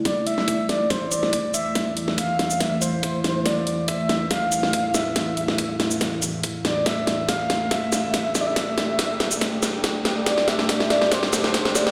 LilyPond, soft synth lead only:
\new Staff \with { instrumentName = "Soft synth lead" } { \time 4/4 \key a \minor \tempo 4 = 141 d''8 e''4 d''8 c''8 d''4 e''8~ | e''8 r8 f''4 e''8 c''4. | d''4 e''4 f''4. e''8~ | e''4. r2 d''8 |
e''4 f''4 e''4. e''32 d''32 e''16 | e''2 r2 | d''8 e''4 d''8 c''4. d''8 | }